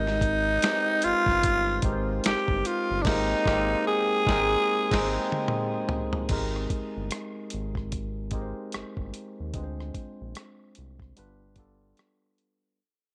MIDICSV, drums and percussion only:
0, 0, Header, 1, 2, 480
1, 0, Start_track
1, 0, Key_signature, -4, "major"
1, 0, Tempo, 810811
1, 1806, Time_signature, 4, 2, 24, 8
1, 7784, End_track
2, 0, Start_track
2, 0, Title_t, "Drums"
2, 44, Note_on_c, 9, 38, 39
2, 103, Note_off_c, 9, 38, 0
2, 126, Note_on_c, 9, 36, 92
2, 130, Note_on_c, 9, 42, 67
2, 186, Note_off_c, 9, 36, 0
2, 190, Note_off_c, 9, 42, 0
2, 369, Note_on_c, 9, 42, 84
2, 378, Note_on_c, 9, 26, 91
2, 378, Note_on_c, 9, 38, 112
2, 429, Note_off_c, 9, 42, 0
2, 437, Note_off_c, 9, 26, 0
2, 437, Note_off_c, 9, 38, 0
2, 603, Note_on_c, 9, 42, 82
2, 662, Note_off_c, 9, 42, 0
2, 748, Note_on_c, 9, 36, 94
2, 763, Note_on_c, 9, 38, 30
2, 807, Note_off_c, 9, 36, 0
2, 822, Note_off_c, 9, 38, 0
2, 849, Note_on_c, 9, 42, 96
2, 851, Note_on_c, 9, 36, 104
2, 908, Note_off_c, 9, 42, 0
2, 910, Note_off_c, 9, 36, 0
2, 1079, Note_on_c, 9, 42, 75
2, 1082, Note_on_c, 9, 36, 104
2, 1138, Note_off_c, 9, 42, 0
2, 1141, Note_off_c, 9, 36, 0
2, 1325, Note_on_c, 9, 42, 82
2, 1336, Note_on_c, 9, 26, 94
2, 1337, Note_on_c, 9, 38, 127
2, 1384, Note_off_c, 9, 42, 0
2, 1396, Note_off_c, 9, 26, 0
2, 1396, Note_off_c, 9, 38, 0
2, 1469, Note_on_c, 9, 36, 95
2, 1528, Note_off_c, 9, 36, 0
2, 1569, Note_on_c, 9, 42, 75
2, 1628, Note_off_c, 9, 42, 0
2, 1805, Note_on_c, 9, 36, 110
2, 1805, Note_on_c, 9, 49, 83
2, 1817, Note_on_c, 9, 38, 107
2, 1864, Note_off_c, 9, 49, 0
2, 1865, Note_off_c, 9, 36, 0
2, 1876, Note_off_c, 9, 38, 0
2, 2046, Note_on_c, 9, 36, 103
2, 2057, Note_on_c, 9, 38, 102
2, 2105, Note_off_c, 9, 36, 0
2, 2116, Note_off_c, 9, 38, 0
2, 2526, Note_on_c, 9, 36, 117
2, 2538, Note_on_c, 9, 38, 111
2, 2585, Note_off_c, 9, 36, 0
2, 2597, Note_off_c, 9, 38, 0
2, 2909, Note_on_c, 9, 36, 107
2, 2910, Note_on_c, 9, 49, 81
2, 2922, Note_on_c, 9, 38, 109
2, 2968, Note_off_c, 9, 36, 0
2, 2969, Note_off_c, 9, 49, 0
2, 2981, Note_off_c, 9, 38, 0
2, 3151, Note_on_c, 9, 48, 86
2, 3210, Note_off_c, 9, 48, 0
2, 3245, Note_on_c, 9, 47, 96
2, 3305, Note_off_c, 9, 47, 0
2, 3485, Note_on_c, 9, 43, 105
2, 3544, Note_off_c, 9, 43, 0
2, 3627, Note_on_c, 9, 43, 92
2, 3687, Note_off_c, 9, 43, 0
2, 3722, Note_on_c, 9, 42, 62
2, 3724, Note_on_c, 9, 49, 74
2, 3726, Note_on_c, 9, 36, 95
2, 3782, Note_off_c, 9, 42, 0
2, 3783, Note_off_c, 9, 49, 0
2, 3785, Note_off_c, 9, 36, 0
2, 3884, Note_on_c, 9, 37, 35
2, 3943, Note_off_c, 9, 37, 0
2, 3966, Note_on_c, 9, 36, 81
2, 3967, Note_on_c, 9, 42, 65
2, 4025, Note_off_c, 9, 36, 0
2, 4027, Note_off_c, 9, 42, 0
2, 4207, Note_on_c, 9, 42, 83
2, 4216, Note_on_c, 9, 37, 94
2, 4266, Note_off_c, 9, 42, 0
2, 4275, Note_off_c, 9, 37, 0
2, 4442, Note_on_c, 9, 42, 71
2, 4501, Note_off_c, 9, 42, 0
2, 4589, Note_on_c, 9, 36, 73
2, 4602, Note_on_c, 9, 37, 27
2, 4648, Note_off_c, 9, 36, 0
2, 4661, Note_off_c, 9, 37, 0
2, 4688, Note_on_c, 9, 42, 76
2, 4692, Note_on_c, 9, 36, 85
2, 4748, Note_off_c, 9, 42, 0
2, 4751, Note_off_c, 9, 36, 0
2, 4918, Note_on_c, 9, 42, 61
2, 4923, Note_on_c, 9, 36, 83
2, 4977, Note_off_c, 9, 42, 0
2, 4982, Note_off_c, 9, 36, 0
2, 5164, Note_on_c, 9, 42, 70
2, 5176, Note_on_c, 9, 37, 108
2, 5223, Note_off_c, 9, 42, 0
2, 5236, Note_off_c, 9, 37, 0
2, 5309, Note_on_c, 9, 36, 85
2, 5369, Note_off_c, 9, 36, 0
2, 5409, Note_on_c, 9, 42, 65
2, 5468, Note_off_c, 9, 42, 0
2, 5646, Note_on_c, 9, 42, 67
2, 5647, Note_on_c, 9, 36, 97
2, 5705, Note_off_c, 9, 42, 0
2, 5706, Note_off_c, 9, 36, 0
2, 5804, Note_on_c, 9, 37, 29
2, 5863, Note_off_c, 9, 37, 0
2, 5887, Note_on_c, 9, 36, 77
2, 5888, Note_on_c, 9, 42, 57
2, 5946, Note_off_c, 9, 36, 0
2, 5947, Note_off_c, 9, 42, 0
2, 6129, Note_on_c, 9, 42, 79
2, 6137, Note_on_c, 9, 37, 94
2, 6188, Note_off_c, 9, 42, 0
2, 6197, Note_off_c, 9, 37, 0
2, 6364, Note_on_c, 9, 42, 62
2, 6423, Note_off_c, 9, 42, 0
2, 6510, Note_on_c, 9, 36, 82
2, 6524, Note_on_c, 9, 37, 23
2, 6569, Note_off_c, 9, 36, 0
2, 6584, Note_off_c, 9, 37, 0
2, 6611, Note_on_c, 9, 42, 73
2, 6670, Note_off_c, 9, 42, 0
2, 6842, Note_on_c, 9, 42, 56
2, 6844, Note_on_c, 9, 36, 82
2, 6901, Note_off_c, 9, 42, 0
2, 6903, Note_off_c, 9, 36, 0
2, 7087, Note_on_c, 9, 42, 66
2, 7100, Note_on_c, 9, 37, 101
2, 7146, Note_off_c, 9, 42, 0
2, 7159, Note_off_c, 9, 37, 0
2, 7330, Note_on_c, 9, 42, 57
2, 7389, Note_off_c, 9, 42, 0
2, 7784, End_track
0, 0, End_of_file